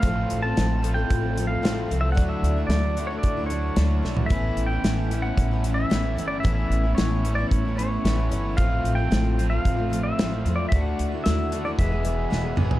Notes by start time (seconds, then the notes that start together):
0.00 A1 A2 F3 A3 C4 A4 F5, kick, closed hi-hat
0.04 F4
0.30 A1, closed hi-hat
0.42 C4 F4 A4 A5
0.56 A1 A2 F3 C4 F4 A4, snare, closed hi-hat
0.82 A2 F3 A3 C4 F4 A4, closed hi-hat
0.94 F4 A4 G5
0.99 C4
1.10 A1, kick, closed hi-hat
1.21 C4 F4 A4
1.36 F3 C4 F4 A4, closed hi-hat
1.47 F5
1.62 A1 A2 F3 A3 C4 F4 A4, snare, closed hi-hat
1.88 C2 F3 C4 F4 A4, closed hi-hat
2.01 E5
2.12 D3 F#3 A3 F#5
2.16 D2 D4 E4 F#4, kick, closed hi-hat
2.29 E5
2.43 D2, closed hi-hat
2.56 A3 D4 E4
2.67 D2 D3 F#3 D5, snare, closed hi-hat
2.71 A3 D4 E4
2.96 D3 F#3 A3 D4 E4 F#4, closed hi-hat
3.07 E4 C#5
3.13 A3 D4
3.19 D5
3.23 D2, kick, closed hi-hat
3.37 A3 D4 E4
3.46 F#3 C#5, closed hi-hat
3.51 A3 D4 E4
3.76 D2 D3 F#3 A3 D4 E4, snare, closed hi-hat
3.80 F#4
4.02 B1 F#3 A3 D4 E4, snare
4.17 floor tom
4.26 A2 E5, closed hi-hat
4.30 A1 E3 A3 B3 C#4 E4, kick
4.56 A1, closed hi-hat
4.66 E4 G5
4.72 B3 C#4
4.83 A1 A2 E3 B3 C#4 E4, snare, closed hi-hat
5.11 A2 E3 A3 B3 C#4 E4, closed hi-hat
5.22 B3 C#4 E4 F#5
5.37 A1, kick, closed hi-hat
5.51 B3 C#4 E4
5.64 E3 B3 C#4 E4, closed hi-hat
5.74 E5
5.90 A1 A2 E3 A3 B3 C#4 E4, snare, closed hi-hat
6.03 B3 C#4 E4
6.17 G1 E3 B3 C#4 E4, closed hi-hat
6.28 D5
6.40 A2 E3 B3 E5
6.45 A1 A3 C#4 E4, kick, closed hi-hat
6.55 E5
6.70 A1, closed hi-hat
6.84 B3 C#4 E4
6.95 A1 A2 E3 B3 C#4 E4 C#5, snare, closed hi-hat
7.24 A2 E3 A3 B3 C#4 E4, closed hi-hat
7.35 E4 D5
7.40 B3 C#4
7.49 A1 C#5, kick, closed hi-hat
7.65 B3 C#4 E4
7.77 E3 B3 C#4 E4 C#5, closed hi-hat
8.04 A1 A2 E3 A3 B3 C#4 E4, snare, closed hi-hat
8.17 B3 C#4 E4
8.30 G1 E3 B3 C#4 E4, closed hi-hat
8.57 A1 A2 F3 A3 C4 F4 F5, kick, closed hi-hat
8.84 A1, closed hi-hat
8.95 C4 F4 G5
9.00 A3
9.11 A1 A2 F3 A3 C4 F4, snare, closed hi-hat
9.37 F3 A3 C4 F4, closed hi-hat
9.41 A2
9.50 A3 C4 F4 F5
9.65 A1, kick, closed hi-hat
9.77 A3 C4 F4
9.90 F3 A3 C4 F4, closed hi-hat
10.03 E5
10.18 A1 A2 F3 A3 C4 F4, snare, closed hi-hat
10.32 A3 C4 F4
10.45 E2 F3 A3 C4 F4, closed hi-hat
10.56 D5
10.69 D2 D3 E5, kick, closed hi-hat
10.73 A3 D4 E4 F#4
10.81 F#5
10.99 D2, closed hi-hat
11.12 A3 E4 F#4
11.24 D#2 D3 A3 E4 E5, snare, closed hi-hat
11.28 F#4
11.52 D3 A3 D4 E4 F#4, closed hi-hat
11.65 A3 E4 F#4 D5
11.78 E1 E2 B2 E3 G#3 B3 G#4 E5, kick, closed hi-hat
11.92 E3 G#3 B3 G#4
12.03 E3 G#3 B3 G#4, closed hi-hat
12.30 E1 E2 B2 E3 G#3 B3 G#4, snare
12.43 E3 G#3 B3 G#4
12.56 G#1 E3 G#3 B3 G#4, mid tom
12.60 E2 B2 E3
12.71 floor tom